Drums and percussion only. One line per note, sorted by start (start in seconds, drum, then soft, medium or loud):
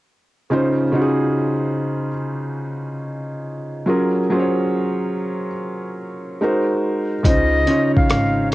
7.24 kick loud
7.24 closed hi-hat medium
7.67 closed hi-hat medium
7.97 kick medium
8.10 cross-stick medium
8.10 closed hi-hat medium